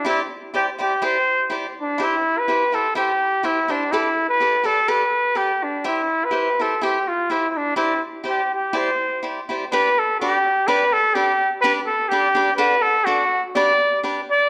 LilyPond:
<<
  \new Staff \with { instrumentName = "Cavaquinho" } { \time 2/4 \key c \major \tempo 4 = 125 <e' g' c'' d''>8 r8 <e' g' c'' d''>8 <e' g' c'' d''>8 | <e' g' c'' d''>8 r8 <e' g' c'' d''>8 r8 | <e' g' c'' e''>8 r8 <e' g' c'' e''>8 <e' g' c'' e''>8 | <e' g' c'' e''>8 r8 <e' g' c'' e''>8 <e' g' c'' e''>8 |
<g' a' b' d''>8 r8 <g' a' b' d''>8 <g' a' b' d''>8 | <g' a' b' d''>8 r8 <g' a' b' d''>8 r8 | <e' g' c'' e''>8 r8 <e' g' c'' e''>8 <e' g' c'' e''>8 | <e' g' c'' e''>8 r8 <e' g' c'' e''>8 r8 |
<e' g' c'' d''>8 r8 <e' g' c'' d''>8 r8 | <e' g' c'' d''>8 r8 <e' g' c'' d''>8 <e' g' c'' d''>8 | \key g \major <d' g' b' d''>8 r8 <d' g' b' d''>8 r8 | <d' g' b' d''>8 r8 <d' g' b' d''>8 r8 |
<d' g' b' d''>8 r8 <d' g' b' d''>8 <d' g' b' d''>8 | <d' a' d'' fis''>8 r8 <d' a' d'' fis''>8 r8 | <d' g' b' d''>8 r8 <d' g' b' d''>8 r8 | }
  \new Staff \with { instrumentName = "Trumpet" } { \time 2/4 \key c \major e'8 r8 g'8 g'8 | c''4 r8 d'8 | e'8. b'8. a'8 | g'4 e'8 d'8 |
e'8. b'8. a'8 | b'4 g'8 d'8 | e'8. b'8. a'8 | g'8 f'8 e'16. e'32 d'8 |
e'8 r8 g'8 g'8 | c''4 r4 | \key g \major b'8 a'8 g'4 | b'8 a'8 g'8. r16 |
b'8 a'8 g'4 | b'8 a'8 fis'8. r16 | d''4 r8 d''8 | }
>>